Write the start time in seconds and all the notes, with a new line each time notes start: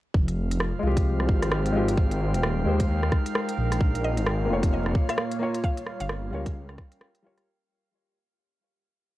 0.14 F1 F3 F5, kick
0.25 F4, closed hi-hat
0.38 C5
0.51 closed hi-hat
0.60 cross-stick
0.79 C2 G#3 F4
0.87 G4
0.97 G5, kick, closed hi-hat
1.20 cross-stick
1.29 G#1, kick
1.43 cross-stick, closed hi-hat
1.52 cross-stick
1.66 closed hi-hat
1.73 G#3 F4
1.77 G4
1.88 closed hi-hat
1.97 G#1 G#3, kick
2.11 closed hi-hat
2.34 D#1, closed hi-hat
2.38 D#4
2.43 cross-stick
2.65 D#2 G#3 G4 C5
2.80 A#4, kick, closed hi-hat
3.03 cross-stick
3.12 kick, cross-stick
3.26 closed hi-hat
3.35 cross-stick
3.49 closed hi-hat
3.58 A#1
3.72 cross-stick, closed hi-hat
3.81 A#2, kick
3.95 closed hi-hat
4.04 D#5
4.17 G#1 A#3, closed hi-hat
4.22 F5
4.26 cross-stick
4.45 F1 A#3 F4
4.53 C#5
4.63 F4 C#5, kick, closed hi-hat
4.86 cross-stick
4.95 kick
5.09 F5, cross-stick, closed hi-hat
5.18 cross-stick
5.32 closed hi-hat
5.39 A#3 F4 C#5
5.54 closed hi-hat
5.64 G3 F5, kick
5.77 closed hi-hat
5.86 cross-stick
5.99 G1 C#4 F5, closed hi-hat
6.09 cross-stick
6.31 C#2 G3 F4 A#4 C#5
6.45 A#4 G5, kick, closed hi-hat
6.69 cross-stick
6.78 kick, cross-stick
6.92 closed hi-hat
7.01 cross-stick
7.15 closed hi-hat
7.22 G3 F4 A#4 C#5
7.38 cross-stick, closed hi-hat